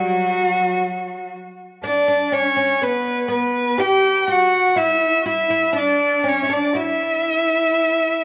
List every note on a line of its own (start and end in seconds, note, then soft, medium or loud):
0.00 1.30 F#3 medium
0.00 1.35 F#3 medium
0.00 1.35 F#4 medium
1.83 2.35 D4 medium
1.83 2.07 D4 medium
1.83 2.34 D5 medium
2.08 2.31 D4 medium
2.32 2.55 C#4 medium
2.32 2.84 C#4 medium
2.32 2.84 C#5 medium
2.56 2.82 C#4 medium
2.82 3.27 B3 medium
2.82 3.31 B3 medium
2.82 3.31 B4 medium
3.28 3.75 B3 medium
3.28 3.81 B4 medium
3.32 3.82 B3 medium
3.78 4.27 G4 medium
3.78 4.28 G4 medium
3.78 4.33 G5 loud
4.28 4.75 F#4 medium
4.28 4.79 F#4 medium
4.32 4.79 F#5 loud
4.76 5.24 E4 medium
4.76 5.20 E4 medium
4.76 5.27 E5 loud
5.22 5.49 E4 medium
5.22 5.77 E4 medium
5.22 5.27 F#4 medium
5.28 5.80 E5 medium
5.50 5.72 E4 medium
5.73 6.23 D4 medium
5.73 6.29 D4 medium
5.78 6.30 D5 loud
6.23 6.43 C#4 medium
6.23 6.53 C#4 medium
6.28 6.55 C#5 medium
6.43 6.49 E4 medium
6.49 6.74 D4 medium
6.49 6.75 D4 medium
6.49 6.78 D5 medium
6.73 8.24 E4 medium
6.73 6.82 F#4 medium
6.73 8.24 E5 loud
6.80 8.24 E4 medium